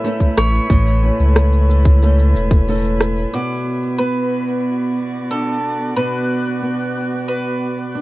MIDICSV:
0, 0, Header, 1, 7, 480
1, 0, Start_track
1, 0, Key_signature, 2, "minor"
1, 0, Tempo, 659341
1, 508, Time_signature, 4, 2, 24, 8
1, 5834, End_track
2, 0, Start_track
2, 0, Title_t, "Synth texture"
2, 0, Program_c, 0, 99
2, 2429, Note_on_c, 0, 90, 69
2, 5834, Note_off_c, 0, 90, 0
2, 5834, End_track
3, 0, Start_track
3, 0, Title_t, "Mandolin"
3, 0, Program_c, 1, 25
3, 0, Note_on_c, 1, 76, 115
3, 270, Note_off_c, 1, 76, 0
3, 273, Note_on_c, 1, 73, 99
3, 1921, Note_off_c, 1, 73, 0
3, 2428, Note_on_c, 1, 74, 83
3, 2879, Note_off_c, 1, 74, 0
3, 2900, Note_on_c, 1, 71, 76
3, 3864, Note_on_c, 1, 69, 74
3, 3893, Note_off_c, 1, 71, 0
3, 4317, Note_off_c, 1, 69, 0
3, 4343, Note_on_c, 1, 71, 72
3, 5292, Note_off_c, 1, 71, 0
3, 5301, Note_on_c, 1, 71, 66
3, 5834, Note_off_c, 1, 71, 0
3, 5834, End_track
4, 0, Start_track
4, 0, Title_t, "String quartet"
4, 0, Program_c, 2, 48
4, 0, Note_on_c, 2, 57, 75
4, 0, Note_on_c, 2, 59, 80
4, 0, Note_on_c, 2, 64, 75
4, 0, Note_on_c, 2, 71, 77
4, 123, Note_off_c, 2, 59, 0
4, 2418, Note_on_c, 2, 59, 68
4, 2431, Note_off_c, 2, 57, 0
4, 2770, Note_on_c, 2, 66, 67
4, 3184, Note_on_c, 2, 74, 70
4, 3402, Note_off_c, 2, 71, 0
4, 3961, Note_off_c, 2, 64, 0
4, 5834, Note_off_c, 2, 59, 0
4, 5834, Note_off_c, 2, 66, 0
4, 5834, Note_off_c, 2, 74, 0
4, 5834, End_track
5, 0, Start_track
5, 0, Title_t, "Nylon-string guitar"
5, 0, Program_c, 3, 24
5, 0, Note_on_c, 3, 45, 91
5, 28, Note_on_c, 3, 57, 72
5, 33, Note_on_c, 3, 61, 73
5, 37, Note_on_c, 3, 69, 75
5, 500, Note_off_c, 3, 45, 0
5, 509, Note_on_c, 3, 45, 95
5, 741, Note_off_c, 3, 61, 0
5, 750, Note_on_c, 3, 61, 60
5, 1222, Note_off_c, 3, 69, 0
5, 1231, Note_on_c, 3, 69, 68
5, 1465, Note_off_c, 3, 57, 0
5, 1467, Note_off_c, 3, 61, 0
5, 1470, Note_off_c, 3, 69, 0
5, 1473, Note_on_c, 3, 57, 66
5, 1476, Note_on_c, 3, 61, 69
5, 1482, Note_on_c, 3, 69, 76
5, 1944, Note_off_c, 3, 57, 0
5, 1948, Note_off_c, 3, 61, 0
5, 1952, Note_on_c, 3, 57, 66
5, 1953, Note_off_c, 3, 69, 0
5, 1957, Note_on_c, 3, 61, 65
5, 1962, Note_on_c, 3, 69, 74
5, 2426, Note_off_c, 3, 45, 0
5, 2429, Note_on_c, 3, 47, 71
5, 2431, Note_off_c, 3, 69, 0
5, 2434, Note_on_c, 3, 66, 59
5, 2478, Note_off_c, 3, 57, 0
5, 2481, Note_off_c, 3, 61, 0
5, 2906, Note_on_c, 3, 59, 52
5, 3861, Note_on_c, 3, 62, 50
5, 4334, Note_off_c, 3, 47, 0
5, 4338, Note_off_c, 3, 66, 0
5, 4342, Note_on_c, 3, 47, 66
5, 4347, Note_on_c, 3, 66, 58
5, 4812, Note_off_c, 3, 59, 0
5, 4821, Note_on_c, 3, 59, 53
5, 5778, Note_off_c, 3, 62, 0
5, 5787, Note_on_c, 3, 62, 55
5, 5834, Note_off_c, 3, 47, 0
5, 5834, Note_off_c, 3, 59, 0
5, 5834, Note_off_c, 3, 62, 0
5, 5834, Note_off_c, 3, 66, 0
5, 5834, End_track
6, 0, Start_track
6, 0, Title_t, "Sub bass"
6, 0, Program_c, 4, 38
6, 271, Note_on_c, 4, 33, 96
6, 430, Note_off_c, 4, 33, 0
6, 509, Note_on_c, 4, 33, 99
6, 805, Note_off_c, 4, 33, 0
6, 869, Note_on_c, 4, 37, 73
6, 1703, Note_off_c, 4, 37, 0
6, 1708, Note_on_c, 4, 28, 91
6, 2364, Note_off_c, 4, 28, 0
6, 5834, End_track
7, 0, Start_track
7, 0, Title_t, "Drums"
7, 33, Note_on_c, 9, 46, 65
7, 39, Note_on_c, 9, 82, 42
7, 106, Note_off_c, 9, 46, 0
7, 112, Note_off_c, 9, 82, 0
7, 148, Note_on_c, 9, 36, 58
7, 154, Note_on_c, 9, 46, 45
7, 221, Note_off_c, 9, 36, 0
7, 227, Note_off_c, 9, 46, 0
7, 274, Note_on_c, 9, 37, 74
7, 280, Note_on_c, 9, 82, 75
7, 347, Note_off_c, 9, 37, 0
7, 353, Note_off_c, 9, 82, 0
7, 395, Note_on_c, 9, 46, 32
7, 401, Note_on_c, 9, 82, 31
7, 467, Note_off_c, 9, 46, 0
7, 473, Note_off_c, 9, 82, 0
7, 509, Note_on_c, 9, 36, 122
7, 515, Note_on_c, 9, 46, 77
7, 521, Note_on_c, 9, 82, 44
7, 582, Note_off_c, 9, 36, 0
7, 588, Note_off_c, 9, 46, 0
7, 594, Note_off_c, 9, 82, 0
7, 634, Note_on_c, 9, 46, 44
7, 640, Note_on_c, 9, 82, 32
7, 707, Note_off_c, 9, 46, 0
7, 713, Note_off_c, 9, 82, 0
7, 871, Note_on_c, 9, 46, 33
7, 877, Note_on_c, 9, 82, 30
7, 944, Note_off_c, 9, 46, 0
7, 950, Note_off_c, 9, 82, 0
7, 989, Note_on_c, 9, 37, 88
7, 989, Note_on_c, 9, 46, 77
7, 995, Note_on_c, 9, 82, 44
7, 1062, Note_off_c, 9, 37, 0
7, 1062, Note_off_c, 9, 46, 0
7, 1068, Note_off_c, 9, 82, 0
7, 1109, Note_on_c, 9, 46, 47
7, 1115, Note_on_c, 9, 82, 32
7, 1182, Note_off_c, 9, 46, 0
7, 1188, Note_off_c, 9, 82, 0
7, 1237, Note_on_c, 9, 82, 75
7, 1310, Note_off_c, 9, 82, 0
7, 1348, Note_on_c, 9, 36, 103
7, 1351, Note_on_c, 9, 46, 34
7, 1357, Note_on_c, 9, 82, 32
7, 1421, Note_off_c, 9, 36, 0
7, 1424, Note_off_c, 9, 46, 0
7, 1430, Note_off_c, 9, 82, 0
7, 1471, Note_on_c, 9, 46, 79
7, 1477, Note_on_c, 9, 82, 46
7, 1544, Note_off_c, 9, 46, 0
7, 1550, Note_off_c, 9, 82, 0
7, 1591, Note_on_c, 9, 46, 42
7, 1597, Note_on_c, 9, 82, 28
7, 1664, Note_off_c, 9, 46, 0
7, 1670, Note_off_c, 9, 82, 0
7, 1717, Note_on_c, 9, 82, 75
7, 1789, Note_off_c, 9, 82, 0
7, 1827, Note_on_c, 9, 36, 109
7, 1831, Note_on_c, 9, 46, 29
7, 1837, Note_on_c, 9, 82, 31
7, 1900, Note_off_c, 9, 36, 0
7, 1904, Note_off_c, 9, 46, 0
7, 1910, Note_off_c, 9, 82, 0
7, 1949, Note_on_c, 9, 46, 33
7, 1955, Note_on_c, 9, 82, 39
7, 1967, Note_off_c, 9, 46, 0
7, 1967, Note_on_c, 9, 46, 35
7, 1983, Note_off_c, 9, 46, 0
7, 1983, Note_on_c, 9, 46, 43
7, 2001, Note_off_c, 9, 46, 0
7, 2001, Note_on_c, 9, 46, 45
7, 2019, Note_off_c, 9, 46, 0
7, 2019, Note_on_c, 9, 46, 51
7, 2028, Note_off_c, 9, 82, 0
7, 2034, Note_off_c, 9, 46, 0
7, 2034, Note_on_c, 9, 46, 55
7, 2050, Note_off_c, 9, 46, 0
7, 2050, Note_on_c, 9, 46, 58
7, 2070, Note_off_c, 9, 46, 0
7, 2070, Note_on_c, 9, 46, 43
7, 2076, Note_on_c, 9, 82, 29
7, 2142, Note_off_c, 9, 46, 0
7, 2148, Note_off_c, 9, 82, 0
7, 2187, Note_on_c, 9, 37, 79
7, 2193, Note_on_c, 9, 82, 76
7, 2260, Note_off_c, 9, 37, 0
7, 2266, Note_off_c, 9, 82, 0
7, 2306, Note_on_c, 9, 46, 34
7, 2312, Note_on_c, 9, 82, 31
7, 2379, Note_off_c, 9, 46, 0
7, 2385, Note_off_c, 9, 82, 0
7, 3632, Note_on_c, 9, 82, 67
7, 3705, Note_off_c, 9, 82, 0
7, 4113, Note_on_c, 9, 82, 64
7, 4185, Note_off_c, 9, 82, 0
7, 5552, Note_on_c, 9, 82, 68
7, 5625, Note_off_c, 9, 82, 0
7, 5791, Note_on_c, 9, 82, 38
7, 5834, Note_off_c, 9, 82, 0
7, 5834, End_track
0, 0, End_of_file